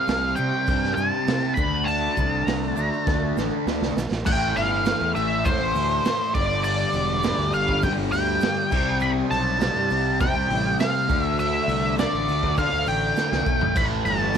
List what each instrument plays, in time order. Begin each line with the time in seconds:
Already playing: distorted electric guitar C3 G3 C4, lead electric guitar F5
0.07 fingered electric bass C2, snare, open hi-hat, shaker
0.35 fingered electric bass C3, distorted electric guitar C3 G3 C4, lead electric guitar G5, shaker
0.67 fingered electric bass G2, kick, open hi-hat, shaker
0.84 snare
0.95 fingered electric bass G2, lead electric guitar A5, shaker
1.27 fingered electric bass C3, snare, open hi-hat, shaker
1.54 fingered electric bass D2, distorted electric guitar D3 A3, lead electric guitar B5, kick, shaker
1.58 distorted electric guitar D4
1.85 lead electric guitar A5, open hi-hat, shaker
2.17 fingered electric bass C2, kick, shaker
2.47 fingered electric bass C2, lead electric guitar A#5, snare, open hi-hat, shaker
2.64 lead electric guitar A5
2.76 fingered electric bass D2, distorted electric guitar D3 A3 D4, shaker
2.83 lead electric guitar A#5
2.93 shaker
3.00 lead electric guitar A5
3.06 fingered electric bass D2, kick, snare, shaker
3.37 fingered electric bass A1, snare, shaker
3.66 fingered electric bass D2, snare, shaker
3.81 fingered electric bass C2, snare
3.95 fingered electric bass B1, snare, shaker
4.11 fingered electric bass A1, snare
4.25 fingered electric bass A1, distorted electric guitar A2 E3 A3, lead electric guitar G5, kick, crash, shaker
4.55 fingered electric bass G1, lead electric guitar F5, open hi-hat, shaker
4.85 snare, open hi-hat, shaker
5.01 fingered electric bass E2
5.14 fingered electric bass A1, distorted electric guitar A2 E3 A3, lead electric guitar E5, open hi-hat, shaker
5.45 fingered electric bass A2, lead electric guitar C5, kick, open hi-hat, shaker
5.60 fingered electric bass A1
5.75 fingered electric bass D2, open hi-hat, shaker
6.05 snare, open hi-hat, shaker
6.34 fingered electric bass G1, distorted electric guitar G2 D3 G3, lead electric guitar D5, kick, open hi-hat, shaker
6.64 lead electric guitar D5, open hi-hat, shaker
6.93 fingered electric bass E1, open hi-hat, shaker
7.23 distorted electric guitar G2 D3 G3, snare, open hi-hat, shaker
7.38 fingered electric bass D2
7.53 fingered electric bass G1, lead electric guitar F5, open hi-hat, shaker
7.68 kick
7.82 fingered electric bass G2, lead electric guitar G5, kick, open hi-hat, shaker
7.98 fingered electric bass G1
8.12 fingered electric bass D2, lead electric guitar G5, open hi-hat, shaker
8.41 snare, open hi-hat, shaker
8.71 fingered electric bass C2, distorted electric guitar C3 G3 C4, kick, crash, shaker
9.00 lead electric guitar B5, shaker
9.31 fingered electric bass B1, lead electric guitar A5, open hi-hat, shaker
9.59 distorted electric guitar C3 G3 C4, snare, open hi-hat, shaker
9.76 fingered electric bass G2
9.90 fingered electric bass C2, open hi-hat, shaker
10.20 fingered electric bass C3, lead electric guitar G5, kick, open hi-hat, shaker
10.35 fingered electric bass C2
10.50 fingered electric bass A1, open hi-hat
10.79 lead electric guitar F5, snare, open hi-hat, shaker
11.09 fingered electric bass D2, distorted electric guitar D3 A3 D4, kick, open hi-hat, shaker
11.23 lead electric guitar E5
11.39 lead electric guitar E5, open hi-hat, shaker
11.68 fingered electric bass C2, open hi-hat, shaker
11.97 distorted electric guitar D3 A3 D4, lead electric guitar D5, snare, open hi-hat, shaker
12.13 fingered electric bass A1
12.28 fingered electric bass D2, open hi-hat, shaker
12.43 kick
12.57 fingered electric bass D3, lead electric guitar F5, kick, open hi-hat, shaker
12.72 fingered electric bass D2
12.86 fingered electric bass A1, lead electric guitar G5, open hi-hat, shaker
13.16 snare, shaker
13.32 fingered electric bass C2, snare
13.46 fingered electric bass B1, kick, shaker
13.61 fingered electric bass A1, floor tom
13.75 fingered electric bass A1, distorted electric guitar A2 E3 A3, lead electric guitar B5, kick, crash, shaker
14.05 fingered electric bass G1, lead electric guitar A5, open hi-hat, shaker
14.34 open hi-hat, shaker